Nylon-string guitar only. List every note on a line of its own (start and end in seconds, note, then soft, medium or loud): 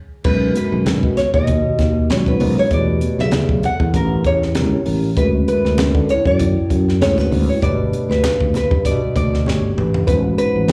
0.25 0.56 B4 medium
0.57 1.17 B4 medium
1.17 1.34 C#5 medium
1.34 2.10 D#5 medium
2.11 2.16 C#5 medium
2.27 2.59 B4 medium
2.59 2.73 C#5 medium
2.73 3.20 D5 medium
3.21 3.65 E5 medium
3.65 3.96 F#5 loud
3.96 4.27 A#4 loud
4.26 4.83 C#5 medium
5.17 5.26 B4 medium
5.48 6.10 B4 medium
6.10 6.27 C#5 loud
6.27 7.01 D5 loud
7.02 7.18 C#5 medium
7.18 7.49 B4 medium
7.49 7.62 C#5 medium
7.63 8.07 D5 medium
8.11 8.55 B4 medium
8.56 8.85 B4 medium
8.86 9.14 D5 loud
9.16 9.73 D5 medium
10.07 10.15 B4 medium
10.38 10.72 B4 medium